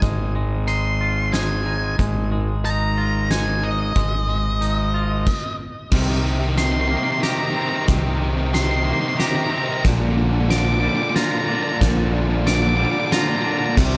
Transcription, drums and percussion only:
0, 0, Header, 1, 2, 480
1, 0, Start_track
1, 0, Key_signature, -3, "minor"
1, 0, Tempo, 654308
1, 21, Time_signature, 3, 2, 24, 8
1, 10248, End_track
2, 0, Start_track
2, 0, Title_t, "Drums"
2, 14, Note_on_c, 9, 42, 47
2, 16, Note_on_c, 9, 36, 84
2, 88, Note_off_c, 9, 42, 0
2, 90, Note_off_c, 9, 36, 0
2, 497, Note_on_c, 9, 42, 47
2, 571, Note_off_c, 9, 42, 0
2, 979, Note_on_c, 9, 38, 67
2, 979, Note_on_c, 9, 42, 48
2, 1053, Note_off_c, 9, 38, 0
2, 1053, Note_off_c, 9, 42, 0
2, 1461, Note_on_c, 9, 36, 87
2, 1461, Note_on_c, 9, 42, 52
2, 1534, Note_off_c, 9, 36, 0
2, 1535, Note_off_c, 9, 42, 0
2, 1946, Note_on_c, 9, 42, 49
2, 2019, Note_off_c, 9, 42, 0
2, 2426, Note_on_c, 9, 38, 65
2, 2426, Note_on_c, 9, 42, 48
2, 2499, Note_off_c, 9, 38, 0
2, 2499, Note_off_c, 9, 42, 0
2, 2904, Note_on_c, 9, 36, 87
2, 2904, Note_on_c, 9, 42, 47
2, 2978, Note_off_c, 9, 36, 0
2, 2978, Note_off_c, 9, 42, 0
2, 3387, Note_on_c, 9, 42, 49
2, 3461, Note_off_c, 9, 42, 0
2, 3864, Note_on_c, 9, 36, 84
2, 3864, Note_on_c, 9, 49, 71
2, 3937, Note_off_c, 9, 36, 0
2, 3937, Note_off_c, 9, 49, 0
2, 4340, Note_on_c, 9, 38, 46
2, 4340, Note_on_c, 9, 49, 98
2, 4343, Note_on_c, 9, 36, 93
2, 4413, Note_off_c, 9, 38, 0
2, 4413, Note_off_c, 9, 49, 0
2, 4416, Note_off_c, 9, 36, 0
2, 4822, Note_on_c, 9, 38, 47
2, 4822, Note_on_c, 9, 42, 60
2, 4896, Note_off_c, 9, 38, 0
2, 4896, Note_off_c, 9, 42, 0
2, 5304, Note_on_c, 9, 38, 50
2, 5304, Note_on_c, 9, 42, 60
2, 5378, Note_off_c, 9, 38, 0
2, 5378, Note_off_c, 9, 42, 0
2, 5780, Note_on_c, 9, 38, 51
2, 5780, Note_on_c, 9, 42, 66
2, 5784, Note_on_c, 9, 36, 91
2, 5853, Note_off_c, 9, 38, 0
2, 5853, Note_off_c, 9, 42, 0
2, 5857, Note_off_c, 9, 36, 0
2, 6266, Note_on_c, 9, 38, 55
2, 6266, Note_on_c, 9, 42, 65
2, 6339, Note_off_c, 9, 38, 0
2, 6339, Note_off_c, 9, 42, 0
2, 6746, Note_on_c, 9, 38, 55
2, 6746, Note_on_c, 9, 42, 62
2, 6819, Note_off_c, 9, 38, 0
2, 6819, Note_off_c, 9, 42, 0
2, 7224, Note_on_c, 9, 38, 63
2, 7224, Note_on_c, 9, 42, 63
2, 7225, Note_on_c, 9, 36, 101
2, 7297, Note_off_c, 9, 38, 0
2, 7297, Note_off_c, 9, 42, 0
2, 7298, Note_off_c, 9, 36, 0
2, 7707, Note_on_c, 9, 38, 61
2, 7707, Note_on_c, 9, 42, 59
2, 7780, Note_off_c, 9, 38, 0
2, 7780, Note_off_c, 9, 42, 0
2, 8185, Note_on_c, 9, 38, 65
2, 8185, Note_on_c, 9, 42, 62
2, 8258, Note_off_c, 9, 38, 0
2, 8258, Note_off_c, 9, 42, 0
2, 8666, Note_on_c, 9, 36, 105
2, 8668, Note_on_c, 9, 38, 70
2, 8668, Note_on_c, 9, 42, 68
2, 8740, Note_off_c, 9, 36, 0
2, 8742, Note_off_c, 9, 38, 0
2, 8742, Note_off_c, 9, 42, 0
2, 9147, Note_on_c, 9, 38, 66
2, 9147, Note_on_c, 9, 42, 69
2, 9221, Note_off_c, 9, 38, 0
2, 9221, Note_off_c, 9, 42, 0
2, 9626, Note_on_c, 9, 38, 76
2, 9626, Note_on_c, 9, 42, 72
2, 9699, Note_off_c, 9, 38, 0
2, 9699, Note_off_c, 9, 42, 0
2, 10105, Note_on_c, 9, 36, 112
2, 10105, Note_on_c, 9, 38, 73
2, 10105, Note_on_c, 9, 57, 94
2, 10178, Note_off_c, 9, 36, 0
2, 10178, Note_off_c, 9, 38, 0
2, 10178, Note_off_c, 9, 57, 0
2, 10248, End_track
0, 0, End_of_file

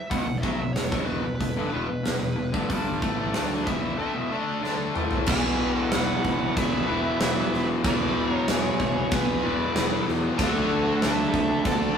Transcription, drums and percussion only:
0, 0, Header, 1, 2, 480
1, 0, Start_track
1, 0, Tempo, 645161
1, 85, Time_signature, 4, 2, 24, 8
1, 4404, Tempo, 636267
1, 8975, End_track
2, 0, Start_track
2, 0, Title_t, "Drums"
2, 82, Note_on_c, 9, 36, 107
2, 84, Note_on_c, 9, 46, 59
2, 156, Note_off_c, 9, 36, 0
2, 158, Note_off_c, 9, 46, 0
2, 322, Note_on_c, 9, 36, 101
2, 397, Note_off_c, 9, 36, 0
2, 564, Note_on_c, 9, 46, 53
2, 565, Note_on_c, 9, 38, 109
2, 638, Note_off_c, 9, 46, 0
2, 640, Note_off_c, 9, 38, 0
2, 685, Note_on_c, 9, 36, 105
2, 760, Note_off_c, 9, 36, 0
2, 1046, Note_on_c, 9, 36, 84
2, 1047, Note_on_c, 9, 46, 52
2, 1120, Note_off_c, 9, 36, 0
2, 1121, Note_off_c, 9, 46, 0
2, 1528, Note_on_c, 9, 46, 51
2, 1530, Note_on_c, 9, 38, 97
2, 1603, Note_off_c, 9, 46, 0
2, 1604, Note_off_c, 9, 38, 0
2, 1889, Note_on_c, 9, 36, 98
2, 1963, Note_off_c, 9, 36, 0
2, 2007, Note_on_c, 9, 36, 94
2, 2008, Note_on_c, 9, 46, 56
2, 2082, Note_off_c, 9, 36, 0
2, 2082, Note_off_c, 9, 46, 0
2, 2248, Note_on_c, 9, 36, 98
2, 2323, Note_off_c, 9, 36, 0
2, 2485, Note_on_c, 9, 46, 55
2, 2487, Note_on_c, 9, 38, 111
2, 2560, Note_off_c, 9, 46, 0
2, 2561, Note_off_c, 9, 38, 0
2, 2730, Note_on_c, 9, 36, 98
2, 2804, Note_off_c, 9, 36, 0
2, 3454, Note_on_c, 9, 38, 54
2, 3528, Note_off_c, 9, 38, 0
2, 3687, Note_on_c, 9, 45, 80
2, 3761, Note_off_c, 9, 45, 0
2, 3800, Note_on_c, 9, 43, 85
2, 3874, Note_off_c, 9, 43, 0
2, 3916, Note_on_c, 9, 49, 127
2, 3916, Note_on_c, 9, 57, 66
2, 3926, Note_on_c, 9, 36, 127
2, 3991, Note_off_c, 9, 49, 0
2, 3991, Note_off_c, 9, 57, 0
2, 4000, Note_off_c, 9, 36, 0
2, 4401, Note_on_c, 9, 57, 65
2, 4403, Note_on_c, 9, 38, 115
2, 4477, Note_off_c, 9, 57, 0
2, 4478, Note_off_c, 9, 38, 0
2, 4650, Note_on_c, 9, 36, 80
2, 4726, Note_off_c, 9, 36, 0
2, 4894, Note_on_c, 9, 36, 111
2, 4895, Note_on_c, 9, 57, 64
2, 4969, Note_off_c, 9, 36, 0
2, 4971, Note_off_c, 9, 57, 0
2, 5373, Note_on_c, 9, 57, 63
2, 5375, Note_on_c, 9, 38, 120
2, 5449, Note_off_c, 9, 57, 0
2, 5450, Note_off_c, 9, 38, 0
2, 5625, Note_on_c, 9, 38, 35
2, 5700, Note_off_c, 9, 38, 0
2, 5855, Note_on_c, 9, 57, 71
2, 5856, Note_on_c, 9, 36, 116
2, 5931, Note_off_c, 9, 57, 0
2, 5932, Note_off_c, 9, 36, 0
2, 6335, Note_on_c, 9, 57, 71
2, 6337, Note_on_c, 9, 38, 118
2, 6411, Note_off_c, 9, 57, 0
2, 6412, Note_off_c, 9, 38, 0
2, 6576, Note_on_c, 9, 36, 79
2, 6651, Note_off_c, 9, 36, 0
2, 6813, Note_on_c, 9, 57, 67
2, 6817, Note_on_c, 9, 36, 123
2, 6889, Note_off_c, 9, 57, 0
2, 6893, Note_off_c, 9, 36, 0
2, 7299, Note_on_c, 9, 57, 65
2, 7300, Note_on_c, 9, 38, 110
2, 7374, Note_off_c, 9, 57, 0
2, 7376, Note_off_c, 9, 38, 0
2, 7545, Note_on_c, 9, 38, 34
2, 7620, Note_off_c, 9, 38, 0
2, 7776, Note_on_c, 9, 36, 116
2, 7780, Note_on_c, 9, 57, 73
2, 7852, Note_off_c, 9, 36, 0
2, 7856, Note_off_c, 9, 57, 0
2, 8252, Note_on_c, 9, 57, 61
2, 8254, Note_on_c, 9, 38, 110
2, 8328, Note_off_c, 9, 57, 0
2, 8329, Note_off_c, 9, 38, 0
2, 8491, Note_on_c, 9, 36, 79
2, 8567, Note_off_c, 9, 36, 0
2, 8729, Note_on_c, 9, 36, 115
2, 8730, Note_on_c, 9, 57, 67
2, 8804, Note_off_c, 9, 36, 0
2, 8805, Note_off_c, 9, 57, 0
2, 8975, End_track
0, 0, End_of_file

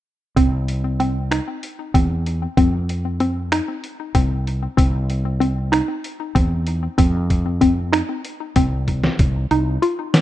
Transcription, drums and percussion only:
0, 0, Header, 1, 2, 480
1, 0, Start_track
1, 0, Tempo, 630915
1, 281, Time_signature, 7, 3, 24, 8
1, 7770, End_track
2, 0, Start_track
2, 0, Title_t, "Drums"
2, 280, Note_on_c, 9, 36, 81
2, 281, Note_on_c, 9, 42, 67
2, 357, Note_off_c, 9, 36, 0
2, 357, Note_off_c, 9, 42, 0
2, 521, Note_on_c, 9, 42, 47
2, 597, Note_off_c, 9, 42, 0
2, 762, Note_on_c, 9, 42, 50
2, 838, Note_off_c, 9, 42, 0
2, 1001, Note_on_c, 9, 26, 88
2, 1001, Note_on_c, 9, 42, 68
2, 1077, Note_off_c, 9, 26, 0
2, 1077, Note_off_c, 9, 42, 0
2, 1241, Note_on_c, 9, 42, 50
2, 1317, Note_off_c, 9, 42, 0
2, 1479, Note_on_c, 9, 36, 84
2, 1482, Note_on_c, 9, 42, 69
2, 1555, Note_off_c, 9, 36, 0
2, 1558, Note_off_c, 9, 42, 0
2, 1723, Note_on_c, 9, 42, 46
2, 1799, Note_off_c, 9, 42, 0
2, 1958, Note_on_c, 9, 36, 86
2, 1959, Note_on_c, 9, 42, 61
2, 2034, Note_off_c, 9, 36, 0
2, 2035, Note_off_c, 9, 42, 0
2, 2201, Note_on_c, 9, 42, 51
2, 2277, Note_off_c, 9, 42, 0
2, 2437, Note_on_c, 9, 42, 47
2, 2513, Note_off_c, 9, 42, 0
2, 2678, Note_on_c, 9, 26, 86
2, 2678, Note_on_c, 9, 42, 67
2, 2754, Note_off_c, 9, 26, 0
2, 2754, Note_off_c, 9, 42, 0
2, 2919, Note_on_c, 9, 42, 48
2, 2995, Note_off_c, 9, 42, 0
2, 3155, Note_on_c, 9, 42, 64
2, 3156, Note_on_c, 9, 36, 83
2, 3231, Note_off_c, 9, 42, 0
2, 3232, Note_off_c, 9, 36, 0
2, 3404, Note_on_c, 9, 42, 46
2, 3480, Note_off_c, 9, 42, 0
2, 3637, Note_on_c, 9, 36, 83
2, 3640, Note_on_c, 9, 42, 65
2, 3714, Note_off_c, 9, 36, 0
2, 3716, Note_off_c, 9, 42, 0
2, 3878, Note_on_c, 9, 42, 44
2, 3954, Note_off_c, 9, 42, 0
2, 4120, Note_on_c, 9, 42, 49
2, 4196, Note_off_c, 9, 42, 0
2, 4358, Note_on_c, 9, 26, 87
2, 4358, Note_on_c, 9, 42, 61
2, 4434, Note_off_c, 9, 26, 0
2, 4434, Note_off_c, 9, 42, 0
2, 4598, Note_on_c, 9, 42, 47
2, 4674, Note_off_c, 9, 42, 0
2, 4835, Note_on_c, 9, 36, 84
2, 4837, Note_on_c, 9, 42, 66
2, 4911, Note_off_c, 9, 36, 0
2, 4913, Note_off_c, 9, 42, 0
2, 5071, Note_on_c, 9, 42, 51
2, 5147, Note_off_c, 9, 42, 0
2, 5314, Note_on_c, 9, 42, 71
2, 5315, Note_on_c, 9, 36, 90
2, 5390, Note_off_c, 9, 42, 0
2, 5391, Note_off_c, 9, 36, 0
2, 5555, Note_on_c, 9, 36, 57
2, 5556, Note_on_c, 9, 42, 53
2, 5631, Note_off_c, 9, 36, 0
2, 5632, Note_off_c, 9, 42, 0
2, 5793, Note_on_c, 9, 42, 54
2, 5794, Note_on_c, 9, 36, 57
2, 5869, Note_off_c, 9, 42, 0
2, 5871, Note_off_c, 9, 36, 0
2, 6035, Note_on_c, 9, 26, 88
2, 6035, Note_on_c, 9, 42, 68
2, 6111, Note_off_c, 9, 26, 0
2, 6111, Note_off_c, 9, 42, 0
2, 6273, Note_on_c, 9, 42, 53
2, 6349, Note_off_c, 9, 42, 0
2, 6511, Note_on_c, 9, 42, 66
2, 6513, Note_on_c, 9, 36, 90
2, 6587, Note_off_c, 9, 42, 0
2, 6589, Note_off_c, 9, 36, 0
2, 6754, Note_on_c, 9, 36, 44
2, 6754, Note_on_c, 9, 42, 49
2, 6830, Note_off_c, 9, 36, 0
2, 6830, Note_off_c, 9, 42, 0
2, 6874, Note_on_c, 9, 38, 62
2, 6950, Note_off_c, 9, 38, 0
2, 6993, Note_on_c, 9, 42, 61
2, 6994, Note_on_c, 9, 36, 94
2, 7069, Note_off_c, 9, 42, 0
2, 7070, Note_off_c, 9, 36, 0
2, 7235, Note_on_c, 9, 42, 45
2, 7311, Note_off_c, 9, 42, 0
2, 7476, Note_on_c, 9, 42, 47
2, 7552, Note_off_c, 9, 42, 0
2, 7714, Note_on_c, 9, 38, 94
2, 7714, Note_on_c, 9, 42, 68
2, 7770, Note_off_c, 9, 38, 0
2, 7770, Note_off_c, 9, 42, 0
2, 7770, End_track
0, 0, End_of_file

